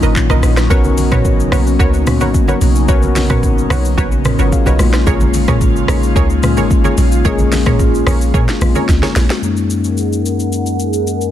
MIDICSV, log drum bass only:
0, 0, Header, 1, 2, 480
1, 0, Start_track
1, 0, Tempo, 545455
1, 620, Time_signature, 4, 2, 24, 8
1, 9955, End_track
2, 0, Start_track
2, 0, Title_t, "Log drum bass"
2, 0, Program_c, 0, 39
2, 26, Note_on_c, 0, 32, 80
2, 133, Note_off_c, 0, 32, 0
2, 265, Note_on_c, 0, 35, 98
2, 373, Note_off_c, 0, 35, 0
2, 381, Note_on_c, 0, 34, 96
2, 604, Note_off_c, 0, 34, 0
2, 621, Note_on_c, 0, 35, 109
2, 1306, Note_off_c, 0, 35, 0
2, 1340, Note_on_c, 0, 35, 108
2, 1564, Note_off_c, 0, 35, 0
2, 1579, Note_on_c, 0, 37, 99
2, 1944, Note_on_c, 0, 34, 87
2, 1958, Note_off_c, 0, 37, 0
2, 2276, Note_off_c, 0, 34, 0
2, 2300, Note_on_c, 0, 35, 92
2, 2524, Note_off_c, 0, 35, 0
2, 2541, Note_on_c, 0, 35, 104
2, 3225, Note_off_c, 0, 35, 0
2, 3260, Note_on_c, 0, 35, 103
2, 3484, Note_off_c, 0, 35, 0
2, 3499, Note_on_c, 0, 34, 92
2, 3840, Note_off_c, 0, 34, 0
2, 3864, Note_on_c, 0, 32, 85
2, 3972, Note_off_c, 0, 32, 0
2, 4104, Note_on_c, 0, 35, 95
2, 4212, Note_off_c, 0, 35, 0
2, 4219, Note_on_c, 0, 34, 109
2, 4444, Note_off_c, 0, 34, 0
2, 4460, Note_on_c, 0, 34, 119
2, 5145, Note_off_c, 0, 34, 0
2, 5179, Note_on_c, 0, 34, 103
2, 5404, Note_off_c, 0, 34, 0
2, 5419, Note_on_c, 0, 37, 104
2, 5785, Note_on_c, 0, 32, 90
2, 5798, Note_off_c, 0, 37, 0
2, 6117, Note_off_c, 0, 32, 0
2, 6140, Note_on_c, 0, 34, 96
2, 6364, Note_off_c, 0, 34, 0
2, 6381, Note_on_c, 0, 34, 120
2, 7066, Note_off_c, 0, 34, 0
2, 7101, Note_on_c, 0, 34, 102
2, 7325, Note_off_c, 0, 34, 0
2, 7339, Note_on_c, 0, 46, 107
2, 7456, Note_off_c, 0, 46, 0
2, 7580, Note_on_c, 0, 34, 91
2, 7697, Note_off_c, 0, 34, 0
2, 7822, Note_on_c, 0, 37, 101
2, 7938, Note_off_c, 0, 37, 0
2, 8061, Note_on_c, 0, 34, 99
2, 8177, Note_off_c, 0, 34, 0
2, 9955, End_track
0, 0, End_of_file